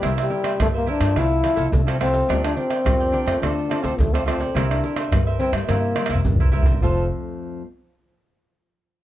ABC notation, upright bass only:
X:1
M:4/4
L:1/16
Q:1/4=106
K:F
V:1 name="Upright bass" clef=bass
C,,2 z2 G,,2 z G,, C,,2 z C,, C,,4 | D,,2 z2 F,,2 z F,, D,,2 z D,, D,,4 | C,,2 z2 G,,2 z G,, G,,2 z C,, C,,4 | F,,,2 z12 z2 |]